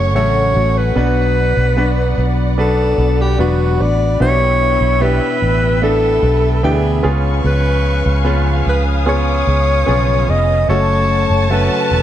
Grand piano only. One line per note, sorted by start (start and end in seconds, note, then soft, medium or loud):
0.00 0.15 A3 medium
0.00 0.15 C#4 medium
0.00 0.16 F#4 medium
0.00 0.11 A4 medium
0.00 0.97 B4 medium
0.15 0.92 A3 medium
0.15 0.92 C#4 medium
0.15 0.92 F#4 medium
0.15 0.92 A4 medium
0.95 2.13 B2 medium
0.95 1.73 B3 medium
0.95 1.73 D4 medium
0.95 1.73 F#4 medium
0.95 1.73 B4 medium
1.77 2.54 B3 medium
1.77 2.54 D4 medium
1.77 2.54 F#4 medium
1.77 2.54 B4 medium
2.58 3.35 B3 medium
2.58 3.35 D4 medium
2.58 3.35 F#4 medium
2.58 3.35 B4 medium
3.39 4.16 B3 medium
3.39 4.16 D4 medium
3.39 4.16 F#4 medium
3.39 4.17 B4 medium
4.20 5.38 B2 medium
4.20 4.97 B3 medium
4.20 4.97 D4 medium
4.20 4.98 E4 medium
4.20 4.27 F#4 medium
4.28 5.00 G4 medium
5.01 5.78 B3 medium
5.01 5.78 D4 medium
5.01 5.78 E4 medium
5.01 5.79 G4 medium
5.82 6.59 B3 medium
5.82 6.59 D4 medium
5.82 6.59 E4 medium
5.82 6.60 A4 medium
6.63 7.01 B3 medium
6.63 7.04 D4 medium
6.63 7.04 E4 medium
6.63 7.04 G5 medium
7.03 8.21 C#3 medium
7.03 8.19 B3 medium
7.03 8.19 C#4 medium
7.03 8.19 F4 medium
7.03 8.19 G#4 medium
8.24 9.02 B3 medium
8.24 9.02 C#4 medium
8.24 9.02 F4 medium
8.24 9.03 B4 medium
9.06 9.83 B3 medium
9.06 9.83 C#4 medium
9.06 9.83 F4 medium
9.06 9.83 G#4 medium
9.86 10.64 B3 medium
9.86 10.64 C#4 medium
9.86 10.64 F4 medium
9.86 10.64 G#4 medium
10.68 11.46 A3 medium
10.68 11.46 C#4 medium
10.68 11.46 F#4 medium
10.68 11.46 A4 medium
11.50 12.02 A3 medium
11.50 12.02 C#4 medium
11.50 12.02 F#4 medium
11.50 12.02 A4 medium